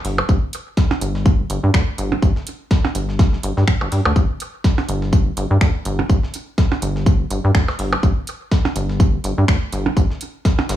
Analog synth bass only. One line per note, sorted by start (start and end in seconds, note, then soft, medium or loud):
0.05 0.21 G1 loud
0.29 0.38 G1 loud
1.01 1.44 G1 medium
1.50 1.59 G1 loud
1.63 1.70 G2 medium
1.74 1.83 D2 medium
1.98 2.15 G1 loud
2.22 2.31 G1 medium
2.95 3.37 G1 medium
3.43 3.52 G1 medium
3.57 3.64 G2 medium
3.81 3.88 G1 loud
3.92 4.01 G2 medium
4.06 4.12 D2 medium
4.16 4.25 G1 loud
4.89 5.31 G1 medium
5.37 5.46 G1 medium
5.51 5.57 G2 medium
5.61 5.70 D2 medium
5.85 6.02 G1 loud
6.09 6.18 G1 loud
6.82 7.24 G1 medium
7.31 7.39 G1 medium
7.44 7.51 G2 medium
7.55 7.63 D2 medium
7.79 7.95 G1 loud
8.03 8.12 G1 loud
8.76 9.18 G1 medium
9.24 9.33 G1 medium
9.38 9.44 G2 medium
9.48 9.57 D2 medium
9.73 9.89 G1 loud
9.97 10.05 G1 loud
10.69 10.76 G1 medium